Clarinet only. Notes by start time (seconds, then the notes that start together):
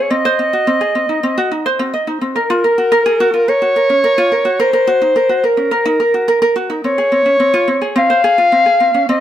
0.02 C#5
0.11 D#5
2.36 A#4
3.49 C#5
4.61 C5
5.46 A#4
6.85 C#5
7.98 F5
9.09 D#5